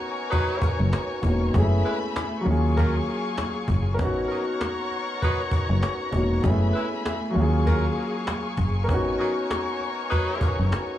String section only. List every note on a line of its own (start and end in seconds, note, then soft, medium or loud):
0.00 1.52 C#5 medium
0.00 1.50 G#5 medium
0.00 1.52 A#5 medium
0.00 1.50 C#6 medium
1.53 2.45 A3 medium
1.53 2.45 E5 medium
1.53 2.45 G#5 medium
1.53 2.45 B5 medium
2.46 3.98 G#4 medium
2.46 3.98 F5 medium
2.46 3.98 G#5 medium
2.46 3.97 C#6 medium
3.98 6.41 C#5 medium
3.98 6.41 F#5 medium
3.98 6.41 A#5 medium
3.98 6.41 C#6 loud
6.44 7.35 A3 medium
6.44 7.35 E5 medium
6.44 7.34 G#5 medium
6.44 7.35 B5 medium
7.35 8.87 G#4 medium
7.35 8.87 F5 medium
7.35 10.98 G#5 medium
7.35 10.98 C#6 medium
8.89 10.98 C#5 medium
8.89 10.98 A#5 medium